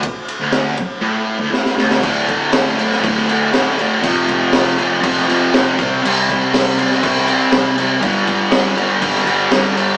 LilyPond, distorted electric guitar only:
\new Staff \with { instrumentName = "Distorted electric guitar" } { \clef bass \time 4/4 \key c \lydian \tempo 4 = 120 r8. d,8. r8 a,8. d,16 a,8 d,8 | <d, a, d>4. <a, d>8 <d, a, d>8 <a, d>8 <d, a, d>8 <a, d>8 | <f, c f>4. <c f>8 <f, c f>8 <c f>8 <f, c f>8 <c g c'>8 | <c g c'>4. <g c'>8 <c g c'>8 <g c'>8 <c g c'>8 <g c'>8 |
<g, d g>4. <d g>8 <g, d g>8 <d g>8 <g, d g>8 <d g>8 | }